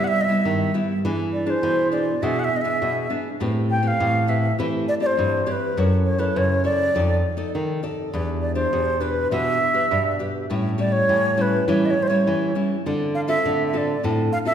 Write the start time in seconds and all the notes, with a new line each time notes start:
Already playing: C3 G3 B3 E4
0.04 E5 F#5
0.21 D#5 E5
0.28 G3 B3 E4
0.45 G2 D#3
0.74 G3 B3 E4
1.05 E3 B3 D4 G#4
1.33 D5
1.46 D4 G#4 D5
1.50 C5
1.63 B2 E3
1.92 B3 D4 G#4 D5
2.22 B2 E3 B3 D4 G#4 E5
2.39 F#5
2.44 E5
2.56 D#5
2.61 B3 D4 G#4 E5
2.82 B2
3.10 B3 D4 G#4
3.40 A2 A3 C4 G4 B4
3.70 G5
3.82 C4 G4 B4 G5
3.87 F5
4.00 A2 E3
4.27 C4 G4 B4 E5
4.58 E3 A3 C4 G4 B4
4.88 D5
5.00 C4 G4 D5
5.06 C5
5.17 G2 E3
5.46 C4 G4 B4 C#5
5.52 B4
5.77 F#2 F#3 E4 A4 C#5
6.06 C#5
6.18 E4 A4 B4 C#5
6.36 F#2 C#3 C#5
6.64 E4 A4 C#5 D5
6.95 F2 F3 D#4 A4 D5
7.37 D#4 A4 D5
7.54 C3 D#3
7.83 D#4 A4 D5
8.14 E2 E3 D4 G4 B4
8.42 D5
8.55 D4 G4 C5
8.73 E2 B2
9.01 D4 G4 B4
9.31 B2 E3 D4 G4 B4 E5
9.73 D4 G4 B4
9.91 G2 B2
10.19 D4 G4 B4
10.50 A2 G3 C#4 E4
10.78 G3 C#4 E4 D5
10.92 C#5
11.09 A2 E3
11.37 G3 C#4 E4 C#5
11.42 B4
11.68 A2 E3 G3 C#4 E4 C#5
11.86 D#5
11.91 C#5
12.03 C5
12.08 G3 C#4 E4 C#5
12.27 E3
12.55 G3 C#4 E4
12.86 D3 C4 F4 A4
13.15 F5
13.28 C4 F4 A4 E5
13.45 A2 D3
13.68 E5
13.73 C4 F4 A4 E5
13.78 D5
14.03 A2 D3 C4 F4 A4
14.32 F5
14.45 C4 F4 A4 E5